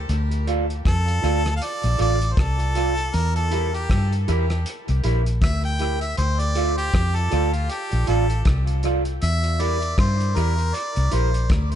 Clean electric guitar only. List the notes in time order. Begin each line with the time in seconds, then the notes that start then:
0.47 F4 A4 D5 F5
1.22 F4 A4 D5 F5
1.98 F4 A4 D5 F5
2.75 F4 A4 D5 F5
3.51 E4 G4 A#4 E5
4.28 E4 G4 A#4 E5
5.04 E4 G4 A#4 E5
5.79 E4 G4 A#4 E5
6.55 F4 A4 D5 F5
7.31 F4 A4 D5 F5
8.07 F4 A4 D5 F5
8.84 F4 A4 D5 F5
9.60 E4 G4 A#4 E5
10.36 E4 G4 A#4 E5
11.11 E4 G4 A#4 E5